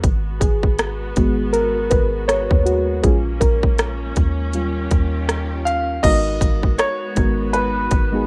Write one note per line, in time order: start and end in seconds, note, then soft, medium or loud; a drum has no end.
0.03 0.40 G#1 loud
0.03 4.50 G#3 medium
0.03 3.01 B3 medium
0.03 3.01 F#4 medium
0.03 kick loud
0.03 closed hi-hat medium
0.40 1.13 G#1 loud
0.40 1.57 G#4 medium
0.40 kick medium
0.40 closed hi-hat medium
0.63 kick medium
0.79 cross-stick loud
0.79 closed hi-hat medium
1.16 1.89 G#1 loud
1.16 2.25 G#3 medium
1.16 2.25 B3 soft
1.16 2.25 F#4 medium
1.16 kick medium
1.16 closed hi-hat medium
1.53 1.92 A#4 loud
1.53 closed hi-hat medium
1.90 2.48 G#1 medium
1.90 2.04 B4 medium
1.90 kick medium
1.90 closed hi-hat medium
2.28 2.67 C#5 loud
2.28 cross-stick loud
2.28 closed hi-hat medium
2.51 3.02 D#2 loud
2.51 kick loud
2.65 2.79 F#4 medium
2.65 closed hi-hat medium
3.03 3.40 A#1 loud
3.03 3.56 G#3 medium
3.03 4.52 A#3 medium
3.03 6.01 C#4 medium
3.03 3.56 C#4 soft
3.03 3.56 F4 medium
3.03 3.17 G#4 medium
3.03 kick loud
3.03 closed hi-hat medium
3.40 4.13 A#1 loud
3.40 4.87 A#4 medium
3.40 kick medium
3.40 closed hi-hat medium
3.63 kick medium
3.78 cross-stick loud
3.78 closed hi-hat medium
4.16 4.88 D#2 loud
4.16 kick medium
4.16 closed hi-hat medium
4.53 6.02 D#3 medium
4.53 6.00 G3 medium
4.53 6.00 C#4 medium
4.53 6.02 F4 medium
4.53 6.00 F4 medium
4.53 6.02 G4 medium
4.53 closed hi-hat medium
4.91 6.00 D#2 loud
4.91 kick medium
4.91 closed hi-hat medium
5.29 cross-stick medium
5.29 closed hi-hat medium
5.65 6.04 F5 medium
5.65 closed hi-hat medium
6.03 6.40 G#1 loud
6.03 6.83 G#3 medium
6.03 8.27 G#3 medium
6.03 6.84 B3 medium
6.03 8.27 B3 medium
6.03 6.84 D#4 medium
6.03 8.27 F#4 medium
6.03 6.85 F#4 medium
6.03 6.85 A#4 medium
6.03 6.81 D#5 loud
6.03 kick loud
6.03 closed hi-hat medium
6.03 crash medium
6.41 6.77 G#1 loud
6.41 kick medium
6.41 closed hi-hat medium
6.63 kick medium
6.78 7.49 C#5 medium
6.78 cross-stick loud
6.78 closed hi-hat medium
7.15 7.89 G#1 loud
7.15 7.83 G#3 medium
7.15 7.84 B3 medium
7.15 7.84 D#4 medium
7.15 7.84 F#4 medium
7.15 7.85 A#4 medium
7.15 kick medium
7.15 closed hi-hat medium
7.53 8.24 B4 medium
7.53 closed hi-hat medium
7.91 8.27 G#1 medium
7.91 kick loud
7.91 closed hi-hat medium
8.12 8.27 G#3 medium
8.12 8.27 B3 medium
8.12 8.27 D#4 medium
8.12 8.27 F#4 medium
8.12 8.27 G#4 medium